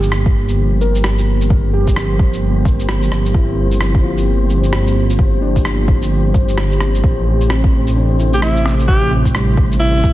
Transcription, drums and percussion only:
0.03 shaker
0.12 cross-stick
0.26 kick
0.49 shaker
0.81 shaker
0.95 shaker
1.04 cross-stick
1.18 shaker
1.41 shaker
1.50 kick
1.87 kick, shaker
1.96 cross-stick
2.19 kick
2.34 shaker
2.65 kick, shaker
2.80 shaker
2.89 cross-stick
3.03 shaker
3.12 cross-stick
3.26 shaker
3.34 kick
3.72 shaker
3.81 cross-stick
3.95 kick
4.18 shaker
4.50 shaker
4.64 shaker
4.73 cross-stick
4.87 shaker
5.10 shaker
5.19 kick
5.56 kick, shaker
5.65 cross-stick
5.88 kick
6.02 shaker
6.34 kick, shaker
6.49 shaker
6.58 cross-stick
6.72 shaker
6.80 cross-stick
6.95 shaker
7.04 kick
7.41 shaker
7.50 cross-stick
7.64 kick
7.87 shaker
8.19 shaker
8.34 shaker
8.42 cross-stick
8.57 shaker
8.66 cross-stick
8.80 shaker
8.88 kick
9.25 kick, shaker
9.35 cross-stick
9.57 kick
9.72 shaker
10.04 kick, shaker

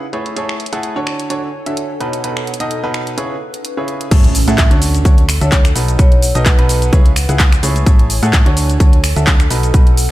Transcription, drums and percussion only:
0.13 closed hi-hat
0.26 closed hi-hat
0.36 closed hi-hat
0.49 finger snap
0.60 closed hi-hat
0.66 closed hi-hat
0.73 closed hi-hat
0.83 closed hi-hat
1.07 finger snap
1.20 closed hi-hat
1.30 closed hi-hat
1.66 closed hi-hat
1.77 closed hi-hat
2.01 closed hi-hat
2.13 closed hi-hat
2.24 closed hi-hat
2.37 finger snap
2.47 closed hi-hat
2.54 closed hi-hat
2.60 closed hi-hat
2.71 closed hi-hat
2.94 finger snap, closed hi-hat
3.07 closed hi-hat
3.18 closed hi-hat
3.54 closed hi-hat
3.65 closed hi-hat
3.88 closed hi-hat
4.01 closed hi-hat
4.11 kick, closed hi-hat, crash, shaker
4.24 closed hi-hat
4.35 open hi-hat, shaker
4.48 closed hi-hat, shaker
4.58 kick, clap, closed hi-hat, shaker
4.71 closed hi-hat
4.82 open hi-hat, shaker
4.95 closed hi-hat, shaker
5.05 kick, closed hi-hat, shaker
5.18 closed hi-hat
5.29 finger snap, open hi-hat, shaker
5.41 closed hi-hat, shaker
5.52 kick, clap, closed hi-hat, shaker
5.65 finger snap, closed hi-hat, shaker
5.76 open hi-hat, shaker
5.88 closed hi-hat, shaker
5.99 kick, closed hi-hat, shaker
6.12 closed hi-hat
6.22 open hi-hat, shaker
6.35 closed hi-hat, shaker
6.46 kick, clap, closed hi-hat, shaker
6.59 closed hi-hat
6.69 open hi-hat, shaker
6.82 closed hi-hat, shaker
6.93 kick, closed hi-hat, shaker
7.06 closed hi-hat
7.16 finger snap, open hi-hat, shaker
7.29 closed hi-hat, shaker
7.39 kick, clap, closed hi-hat, shaker
7.52 finger snap, closed hi-hat, shaker
7.63 open hi-hat, shaker
7.76 closed hi-hat, shaker
7.86 kick, closed hi-hat, shaker
7.99 closed hi-hat
8.10 open hi-hat, shaker
8.23 closed hi-hat, shaker
8.33 kick, clap, closed hi-hat, shaker
8.46 closed hi-hat
8.57 open hi-hat, shaker
8.70 closed hi-hat, shaker
8.80 kick, closed hi-hat, shaker
8.93 closed hi-hat
9.04 finger snap, open hi-hat, shaker
9.16 closed hi-hat, shaker
9.27 kick, clap, closed hi-hat, shaker
9.40 finger snap, closed hi-hat, shaker
9.51 open hi-hat, shaker
9.63 closed hi-hat, shaker
9.74 kick, closed hi-hat, shaker
9.87 closed hi-hat
9.97 open hi-hat, shaker

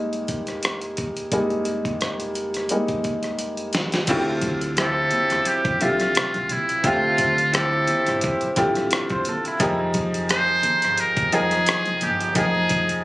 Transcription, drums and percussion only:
0.13 closed hi-hat
0.28 kick, closed hi-hat
0.47 cross-stick, closed hi-hat
0.63 cross-stick, closed hi-hat
0.81 closed hi-hat
0.97 kick, closed hi-hat
1.17 closed hi-hat
1.32 kick, closed hi-hat
1.50 closed hi-hat
1.65 closed hi-hat
1.85 kick, closed hi-hat
2.01 cross-stick, closed hi-hat
2.20 closed hi-hat
2.35 closed hi-hat
2.54 cross-stick, closed hi-hat
2.69 closed hi-hat
2.88 kick, closed hi-hat
3.04 kick, closed hi-hat
3.23 cross-stick, closed hi-hat
3.39 closed hi-hat
3.57 closed hi-hat
3.73 snare, closed hi-hat
3.92 snare, closed hi-hat
4.07 kick, closed hi-hat, crash, muted conga, low conga
4.41 kick, closed hi-hat, high conga
4.61 closed hi-hat
4.77 cross-stick, closed hi-hat, high conga
5.11 closed hi-hat, low conga
5.30 cross-stick, closed hi-hat
5.45 closed hi-hat, muted conga
5.65 kick, closed hi-hat
5.81 closed hi-hat, high conga
6.00 cross-stick, closed hi-hat, high conga
6.15 cross-stick, closed hi-hat
6.34 closed hi-hat, high conga
6.49 closed hi-hat, low conga
6.69 closed hi-hat
6.84 kick, closed hi-hat, low conga
7.03 muted conga
7.17 kick, closed hi-hat, high conga
7.38 closed hi-hat
7.54 cross-stick, closed hi-hat, high conga
7.73 muted conga
7.87 closed hi-hat, low conga
8.06 cross-stick, closed hi-hat
8.21 kick, closed hi-hat, muted conga
8.41 closed hi-hat, muted conga
8.56 kick, closed hi-hat, high conga
8.75 cross-stick, closed hi-hat, high conga
8.91 cross-stick, closed hi-hat, muted conga
9.10 kick, closed hi-hat, high conga
9.25 closed hi-hat, low conga
9.45 closed hi-hat
9.60 kick, closed hi-hat, low conga
9.79 muted conga
9.93 kick, closed hi-hat, high conga
10.14 closed hi-hat
10.29 cross-stick, closed hi-hat, high conga
10.48 muted conga
10.63 closed hi-hat, low conga
10.82 cross-stick, closed hi-hat
10.97 closed hi-hat, muted conga
11.17 kick, closed hi-hat
11.32 closed hi-hat, high conga
11.51 cross-stick, closed hi-hat, high conga
11.66 cross-stick, closed hi-hat
11.85 closed hi-hat, muted conga, high conga
12.01 closed hi-hat, low conga
12.21 closed hi-hat
12.35 kick, closed hi-hat, low conga
12.55 muted conga
12.68 kick, closed hi-hat, high conga
12.89 closed hi-hat

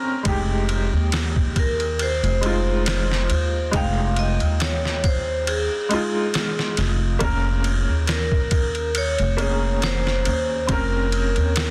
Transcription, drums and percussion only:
0.25 kick, ride
0.69 ride
1.12 snare, ride
1.36 kick
1.56 kick, ride
1.80 ride
1.99 ride
2.24 ride
2.43 ride
2.86 snare, ride
3.12 snare
3.30 ride
3.73 kick, ride
4.16 ride
4.40 ride
4.60 snare, ride
4.85 snare
5.04 kick, ride
5.47 ride
5.91 ride
6.34 snare, ride
6.59 snare
6.77 snare, ride
7.21 kick, ride
7.64 ride
8.07 snare, ride
8.32 kick
8.51 kick, ride
8.75 ride
8.95 ride
9.19 ride
9.38 ride
9.82 snare, ride
10.07 snare
10.25 ride
10.69 kick, ride
11.12 ride
11.36 ride
11.56 snare, ride

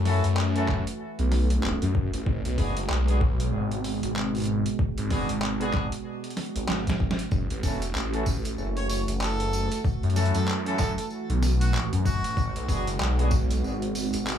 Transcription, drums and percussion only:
0.05 snare, open hi-hat
0.24 closed hi-hat
0.37 clap
0.56 closed hi-hat
0.68 kick, clap, snare
0.87 closed hi-hat
1.19 closed hi-hat
1.32 snare, open hi-hat
1.50 closed hi-hat
1.63 clap
1.82 closed hi-hat
1.95 kick
2.13 closed hi-hat
2.26 kick
2.45 closed hi-hat
2.58 kick, open hi-hat
2.77 closed hi-hat
2.90 clap
3.08 closed hi-hat
3.21 kick
3.40 closed hi-hat
3.71 closed hi-hat
3.84 open hi-hat
4.03 closed hi-hat
4.16 clap
4.35 closed hi-hat
4.37 closed hi-hat
4.38 closed hi-hat
4.40 closed hi-hat
4.42 closed hi-hat
4.44 closed hi-hat
4.45 closed hi-hat
4.66 closed hi-hat
4.79 kick
4.98 closed hi-hat
5.10 kick, snare, open hi-hat
5.29 closed hi-hat
5.42 clap
5.61 closed hi-hat
5.74 kick, clap, snare
5.92 closed hi-hat
6.24 closed hi-hat
6.30 closed hi-hat
6.37 snare, closed hi-hat, open hi-hat
6.46 closed hi-hat
6.56 closed hi-hat
6.69 snare, clap
6.87 kick, snare, closed hi-hat
7.00 kick
7.11 snare
7.19 closed hi-hat
7.31 kick, tambourine
7.50 closed hi-hat
7.63 kick, open hi-hat, tambourine
7.82 closed hi-hat, tambourine
7.95 clap, tambourine
8.14 closed hi-hat
8.26 kick, tambourine
8.45 closed hi-hat, tambourine
8.58 tambourine
8.77 closed hi-hat
8.89 open hi-hat, tambourine
9.08 closed hi-hat, tambourine
9.21 clap, tambourine
9.40 closed hi-hat
9.53 tambourine
9.71 closed hi-hat, tambourine
9.85 kick, tambourine
10.03 closed hi-hat
10.10 closed hi-hat
10.16 snare, closed hi-hat, open hi-hat, tambourine
10.26 closed hi-hat
10.34 closed hi-hat, tambourine
10.48 clap, tambourine
10.66 closed hi-hat
10.79 kick, clap, snare, tambourine
10.98 closed hi-hat, tambourine
11.10 tambourine
11.30 closed hi-hat
11.43 snare, open hi-hat, tambourine
11.61 closed hi-hat, tambourine
11.74 clap, tambourine
11.93 closed hi-hat
12.05 kick, tambourine
12.24 closed hi-hat, tambourine
12.37 kick, tambourine
12.56 closed hi-hat
12.69 kick, open hi-hat, tambourine
12.87 closed hi-hat, tambourine
13.00 clap, tambourine
13.19 closed hi-hat
13.31 kick, tambourine
13.50 closed hi-hat, tambourine
13.64 tambourine
13.82 closed hi-hat
13.95 open hi-hat, tambourine
14.13 closed hi-hat, tambourine
14.27 clap, tambourine

